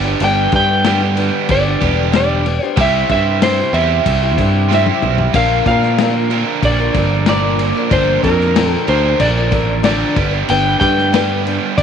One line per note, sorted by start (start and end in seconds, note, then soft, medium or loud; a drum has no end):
0.00 0.14 G1 medium
0.00 0.83 G2 loud
0.00 0.83 D3 loud
0.00 0.86 G3 loud
0.00 0.84 B3 loud
0.00 0.84 D4 loud
0.00 0.87 G4 loud
0.00 0.24 D5 medium
0.04 0.21 G3 soft
0.04 0.22 B3 medium
0.04 0.22 D4 soft
0.04 0.20 G4 medium
0.20 0.46 G1 loud
0.20 0.53 G2 medium
0.20 0.53 D3 medium
0.20 0.51 G3 medium
0.20 0.52 B3 medium
0.20 0.54 D4 medium
0.20 0.54 G4 medium
0.20 crash medium
0.24 0.52 G5 loud
0.52 1.29 G2 medium
0.52 0.85 G3 medium
0.52 0.84 B3 medium
0.52 0.85 D4 medium
0.52 0.85 G4 medium
0.52 kick medium
0.52 crash medium
0.56 1.53 G5 loud
0.84 1.01 G2 medium
0.84 1.01 D3 medium
0.84 1.01 G3 medium
0.84 1.01 B3 medium
0.84 1.01 D4 medium
0.84 1.00 G4 medium
0.84 snare loud
0.84 crash medium
1.01 1.15 G3 soft
1.01 1.16 B3 soft
1.01 1.17 D4 soft
1.01 1.17 G4 medium
1.16 1.65 G3 medium
1.16 1.65 B3 medium
1.16 1.66 D4 medium
1.16 1.64 G4 medium
1.16 crash medium
1.49 1.75 G1 medium
1.49 2.10 D5 loud
1.49 kick medium
1.49 crash medium
1.66 1.80 G3 soft
1.66 1.82 B3 soft
1.66 1.82 D4 medium
1.66 1.81 G4 medium
1.81 2.58 E1 medium
1.81 2.44 G2 medium
1.81 2.44 D3 medium
1.81 2.13 G3 medium
1.81 2.13 B3 medium
1.81 2.13 D4 medium
1.81 2.43 G4 loud
1.81 kick medium
1.81 crash medium
1.85 2.14 G4 medium
2.12 2.45 G2 medium
2.12 2.45 D3 medium
2.12 2.43 G3 medium
2.12 2.45 B3 medium
2.12 2.46 D4 medium
2.12 2.46 G4 medium
2.12 2.65 D5 medium
2.12 snare loud
2.12 crash medium
2.44 2.61 G3 medium
2.44 2.62 B3 medium
2.44 2.62 D4 medium
2.44 2.61 G4 soft
2.44 crash medium
2.63 2.79 G3 soft
2.63 2.79 B3 soft
2.63 2.79 D4 medium
2.63 2.78 G4 medium
2.63 2.80 C5 medium
2.77 3.03 C2 loud
2.77 3.10 C3 medium
2.77 3.09 G3 medium
2.77 3.10 C4 medium
2.77 3.11 E4 medium
2.77 3.10 E5 loud
2.77 kick loud
2.77 crash medium
2.81 3.11 G4 medium
3.09 3.61 G2 medium
3.09 3.42 G3 medium
3.09 3.43 C4 medium
3.09 3.43 E4 medium
3.09 3.40 E5 medium
3.09 kick medium
3.09 crash medium
3.13 3.44 G4 medium
3.42 3.58 C3 medium
3.42 3.58 G3 medium
3.42 3.59 C4 medium
3.42 3.59 E4 medium
3.42 3.58 G4 medium
3.42 3.75 C5 medium
3.42 snare loud
3.42 crash medium
3.59 3.75 C4 soft
3.59 3.76 E4 soft
3.59 3.75 G4 soft
3.73 3.99 E2 medium
3.73 4.68 C3 medium
3.73 4.23 G3 medium
3.73 4.23 C4 medium
3.73 4.68 G4 medium
3.73 4.73 E5 loud
3.73 crash medium
3.77 4.23 E4 medium
3.77 4.21 G4 medium
4.06 4.38 C2 medium
4.06 kick medium
4.06 crash medium
4.22 4.38 C4 soft
4.22 4.39 E4 medium
4.22 4.38 G4 medium
4.38 4.89 G2 medium
4.38 4.70 G3 medium
4.38 4.71 C4 medium
4.38 4.71 E4 medium
4.38 4.72 G4 medium
4.38 kick medium
4.38 crash medium
4.71 5.03 C3 medium
4.71 5.01 G3 medium
4.71 5.02 C4 medium
4.71 5.04 E4 medium
4.71 5.04 G4 medium
4.71 5.35 E5 medium
4.71 snare medium
4.86 high tom medium
5.02 5.28 B1 medium
5.02 5.18 G3 soft
5.02 5.19 C4 soft
5.02 5.18 E4 medium
5.02 5.16 G4 medium
5.02 mid tom medium
5.17 5.34 C4 soft
5.17 5.35 E4 soft
5.17 5.34 G4 medium
5.17 floor tom medium
5.34 5.60 A#1 loud
5.34 5.66 A#2 medium
5.34 5.66 D3 medium
5.34 5.66 F3 medium
5.34 6.31 A#3 medium
5.34 5.67 C4 medium
5.34 5.67 D4 medium
5.34 5.67 A#4 medium
5.34 5.66 F5 loud
5.34 kick loud
5.34 crash medium
5.66 6.43 A#2 medium
5.66 5.99 F3 medium
5.66 6.00 C4 medium
5.66 6.00 D4 medium
5.66 6.66 F5 loud
5.66 kick medium
5.66 crash medium
5.70 6.00 A#4 medium
5.82 snare soft
5.98 6.15 A#2 medium
5.98 6.16 D3 medium
5.98 6.16 F3 medium
5.98 6.15 C4 medium
5.98 6.14 D4 medium
5.98 snare loud
5.98 crash medium
6.03 6.13 A#4 medium
6.14 6.29 F3 soft
6.14 6.31 C4 soft
6.14 6.31 D4 soft
6.14 6.30 A#4 soft
6.30 7.25 A#2 medium
6.30 7.26 D3 medium
6.30 6.79 F3 medium
6.30 7.25 A#3 medium
6.30 6.80 C4 medium
6.30 6.80 D4 medium
6.30 6.78 A#4 medium
6.30 crash medium
6.63 6.88 A#1 medium
6.63 7.24 D5 loud
6.63 kick medium
6.63 crash medium
6.80 6.94 F3 soft
6.80 6.95 C4 soft
6.80 6.96 D4 soft
6.80 6.95 A#4 soft
6.94 7.71 G1 medium
6.94 7.27 F3 medium
6.94 7.27 C4 medium
6.94 7.28 D4 medium
6.94 7.28 A#4 medium
6.94 kick medium
6.94 crash medium
7.26 7.59 A#2 medium
7.26 7.59 D3 medium
7.26 7.59 F3 medium
7.26 7.90 A#3 medium
7.26 7.60 C4 medium
7.26 7.60 D4 medium
7.26 7.60 A#4 medium
7.26 7.88 D5 medium
7.26 snare loud
7.26 crash medium
7.59 7.76 F3 medium
7.59 7.76 C4 soft
7.59 crash medium
7.63 7.77 D4 medium
7.63 7.76 A#4 soft
7.77 7.91 F3 soft
7.77 7.92 C4 soft
7.77 7.92 D4 medium
7.77 7.92 A#4 medium
7.91 8.17 G1 loud
7.91 8.24 A#2 medium
7.91 8.24 D3 medium
7.91 8.24 F3 medium
7.91 8.86 A#3 medium
7.91 8.24 C4 medium
7.91 8.24 D4 medium
7.91 8.25 A#4 medium
7.91 8.24 C5 loud
7.91 kick loud
7.91 crash medium
8.23 8.75 F2 medium
8.23 8.55 F3 medium
8.23 8.56 C4 medium
8.23 8.66 A#4 medium
8.23 kick medium
8.23 crash medium
8.28 8.57 D4 medium
8.28 8.57 A#4 medium
8.41 snare soft
8.56 8.88 A#2 medium
8.56 8.88 D3 medium
8.56 8.87 F3 medium
8.56 8.88 C4 medium
8.56 8.89 D4 medium
8.56 8.89 A#4 medium
8.56 snare loud
8.56 crash medium
8.66 8.84 A4 medium
8.88 9.13 D2 medium
8.88 9.83 A#2 medium
8.88 9.83 D3 medium
8.88 9.36 F3 medium
8.88 9.82 A#3 medium
8.88 9.37 C4 medium
8.88 9.36 D4 medium
8.88 9.36 A#4 medium
8.88 9.21 C5 medium
8.88 crash medium
9.20 9.52 A#1 medium
9.20 9.84 D5 loud
9.20 kick medium
9.20 crash medium
9.37 9.50 F3 soft
9.37 9.52 C4 soft
9.37 9.52 D4 medium
9.37 9.52 A#4 medium
9.51 10.03 A1 medium
9.51 9.83 F3 medium
9.51 9.83 C4 medium
9.51 9.84 D4 medium
9.51 9.84 A#4 medium
9.51 kick medium
9.51 crash medium
9.83 10.14 A#2 medium
9.83 10.16 D3 medium
9.83 10.14 F3 medium
9.83 10.15 A#3 medium
9.83 10.15 C4 medium
9.83 10.15 D4 medium
9.83 10.17 A#4 medium
9.83 10.50 D5 medium
9.83 snare loud
9.83 crash medium
10.15 10.42 G1 loud
10.15 11.11 G2 medium
10.15 11.11 D3 medium
10.15 10.31 G3 soft
10.15 10.32 B3 soft
10.15 10.31 D4 medium
10.15 10.30 B4 medium
10.15 kick loud
10.15 crash medium
10.19 11.12 G4 loud
10.31 10.48 G3 soft
10.31 10.49 B3 soft
10.31 10.48 D4 medium
10.31 10.48 B4 medium
10.49 10.75 G1 loud
10.49 10.81 G2 medium
10.49 10.81 D3 medium
10.49 10.79 G3 medium
10.49 10.80 B3 medium
10.49 10.81 D4 medium
10.49 10.81 B4 medium
10.49 10.79 G5 loud
10.49 crash medium
10.80 11.57 G2 loud
10.80 11.12 G3 medium
10.80 11.13 B3 medium
10.80 11.13 D4 medium
10.80 11.13 B4 medium
10.80 11.79 G5 medium
10.80 kick medium
10.80 crash medium
10.98 snare soft
11.12 11.45 G2 medium
11.12 11.45 D3 medium
11.12 11.45 G3 medium
11.12 11.46 B3 medium
11.12 11.46 D4 medium
11.12 11.83 G4 medium
11.12 11.46 B4 loud
11.12 snare loud
11.12 crash medium
11.46 11.83 G3 medium
11.46 11.83 B3 medium
11.46 11.83 D4 medium
11.46 11.83 B4 medium
11.46 crash medium
11.78 11.83 G1 medium
11.78 11.83 D5 loud
11.78 kick medium
11.78 crash medium